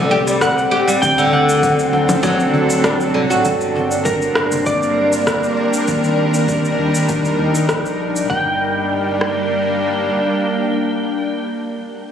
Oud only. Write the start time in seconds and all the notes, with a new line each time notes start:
Already playing: D3
0.11 G4
0.27 G3
0.71 G4
0.88 G3
1.18 D3
2.23 F#3
2.84 D4
3.14 D3
3.30 F#4